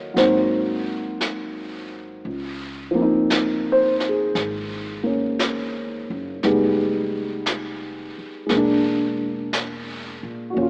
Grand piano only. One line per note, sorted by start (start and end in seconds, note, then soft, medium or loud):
0.00 0.13 F#3 soft
0.00 0.15 A#3 soft
0.00 0.16 C#4 soft
0.00 0.18 F#4 medium
0.00 0.19 A#4 medium
0.00 0.12 C#5 medium
0.00 0.18 D#5 medium
0.00 0.16 F5 soft
0.14 2.25 F#3 soft
0.14 2.26 A#3 soft
0.14 1.18 C5 medium
0.18 2.27 C4 soft
0.18 2.27 D#4 soft
0.18 2.24 F#4 soft
2.91 6.40 F3 medium
2.95 5.02 A#3 soft
2.95 6.44 C4 soft
3.02 6.43 D#4 medium
3.72 4.03 C5 medium
4.09 4.61 G#4 soft
5.03 6.42 A#3 soft
5.03 6.43 C#4 soft
6.43 8.50 G3 soft
6.43 8.45 G#3 soft
6.43 8.51 B3 soft
6.43 8.51 D#4 medium
8.46 10.54 G#3 soft
8.46 10.56 A#3 soft
8.57 10.59 D4 soft
10.50 10.70 A#2 soft
10.50 10.70 F#4 soft
10.58 10.70 C#4 soft
10.58 10.70 F4 soft